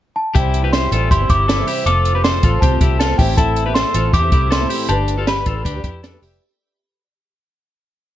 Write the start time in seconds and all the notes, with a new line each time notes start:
0.16 A5
0.35 C2 E3 G3 C4 E4 G4 G5, kick, closed hi-hat
0.54 closed hi-hat
0.63 G3 C4 E4 G4 B4
0.73 G4 C5 C6, snare, closed hi-hat
0.91 A1 E3 G3 C4 E4 F4 A4, closed hi-hat
1.11 G1 E4 G4 C6, kick, closed hi-hat
1.19 G3 C4 E4
1.29 G1 E4 G4 D6, kick, closed hi-hat
1.48 E4 A4, snare, closed hi-hat
1.58 C3 E3 G3 C4 E4
1.67 E4 G4, open hi-hat
1.85 F1 F3 A3 C4 F4 A4 D6, closed hi-hat
2.05 closed hi-hat
2.14 A3 C4 F4 G4 B4
2.24 A4 C5 C6, snare, closed hi-hat
2.43 A1 F3 A3 C4 F4 A4, kick, closed hi-hat
2.61 C2 C4 G4 A5, kick, closed hi-hat
2.71 A3 C4 F4
2.80 C2 E4 G4, kick, closed hi-hat
2.99 F4 A4 A5, snare, closed hi-hat
3.09 F3 A3 C4 F4
3.18 A1 A2 E3 A3 C4 E4 G4 G5, kick, open hi-hat
3.37 E4 A4 A5, kick, closed hi-hat
3.56 closed hi-hat
3.65 A3 C4 E4 G4 B4
3.74 A4 C5 C6, snare, closed hi-hat
3.94 A1 E3 A3 C4 E4 F4 A4, closed hi-hat
4.13 E2 E4 G4 D6, kick, closed hi-hat
4.23 A3 C4 E4
4.32 C2 E4 G4, kick, closed hi-hat
4.51 E4 A4 C6, snare, closed hi-hat
4.60 A2 E3 A3 C4 E4
4.70 E4 G4, open hi-hat
4.88 G1 A3 D4 G4 B4 A5, closed hi-hat
5.08 closed hi-hat
5.17 D4 F4 G4 A4 B4
5.27 G4 B4 B5, snare, closed hi-hat
5.45 A1 A3 D4 F4 G4 A4 B4, kick, closed hi-hat
5.65 D2 D4 G4, kick, closed hi-hat
5.75 D4 G4 B4
5.84 F2 E4 G4, kick, closed hi-hat
6.03 D4 A4, snare, closed hi-hat
6.13 G3 A3 D4 G4 B4
6.22 F1 E4 G4, open hi-hat